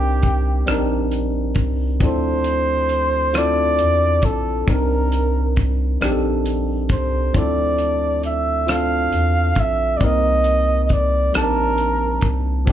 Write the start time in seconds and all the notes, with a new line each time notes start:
Already playing: C2 G3 C4 D4 D#4 G4 A#4
0.23 kick, closed hi-hat
0.66 A#1 G3 C4 D4 D#4, cross-stick, closed hi-hat
0.71 A#4
1.12 closed hi-hat
1.55 C2, kick, closed hi-hat
2.00 D2 F3 C4 D4 E4, kick, closed hi-hat
2.05 A4 C5
2.44 closed hi-hat
2.89 closed hi-hat
3.33 C4 D4 E4 F4, cross-stick, closed hi-hat
3.38 A4 D5
3.79 E2, closed hi-hat
4.22 A#1 A4, kick, closed hi-hat
4.67 C2 G3 C4 D4 D#4 A#4, kick, closed hi-hat
4.71 A#4
5.12 closed hi-hat
5.56 kick, closed hi-hat
6.00 A#1 G3 C4 D4 D#4, cross-stick, closed hi-hat
6.05 G4
6.12 A4
6.46 closed hi-hat
6.89 C2 C5, kick, closed hi-hat
7.34 D2 F3 C4 D4 E4 D5, kick, closed hi-hat
7.38 A4
7.78 closed hi-hat
8.23 E5, closed hi-hat
8.66 C4 D4 F4 F5, cross-stick, closed hi-hat
8.72 A4
9.12 E2, closed hi-hat
9.55 A#1, kick, closed hi-hat
9.60 E5
9.97 G3 C4 D5, kick, closed hi-hat
10.02 C2 A#3 D#4 A#4 D#5
10.44 closed hi-hat
10.85 D#5
10.89 D5, kick, closed hi-hat
11.33 A#1 G3 C4 D4 D#4 A#4, cross-stick, closed hi-hat
11.38 A5
11.78 closed hi-hat
12.21 C2, kick, closed hi-hat
12.65 D2 F3 C4 D4 E4, kick, closed hi-hat